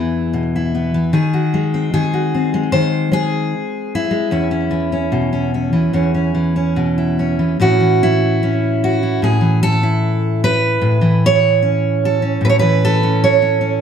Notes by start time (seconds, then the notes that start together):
Already playing: E2 E3 B3 E4 G#4
0.33 B2
0.56 E4
0.75 B3
0.94 E3
1.13 D#3 G#4
1.33 F#4
1.54 G#3
1.74 C4
1.94 D#3 G#4
2.14 F#4
2.35 C4
2.54 G#3
2.72 D#3 C5
3.12 G#3 G#4
3.95 E4
4.11 G#3
4.31 E2 C#4
4.51 C#4
4.71 E3
4.92 C#4
5.12 B2
5.33 C#4
5.54 C#4
5.73 E3
5.93 E2 C#4
6.14 C#4
6.35 E3
6.56 C#4
6.76 B2
6.98 E4
7.19 C#4
7.39 E3
7.60 A2 E3 C#4 E4 F#4
7.80 E3
8.03 E4
8.43 C#4
8.84 F#4
9.03 E4
9.22 A2 G#4
9.41 E3
9.63 A4
9.83 E4
10.44 B4
10.81 A2
11.01 E3
11.26 C#5
11.62 C#4
12.05 A4
12.22 C#4
12.41 A2 B4
12.49 C#5
12.59 E3 B4
12.85 A4
13.03 C#4
13.24 C#5
13.42 C#4
13.61 C#4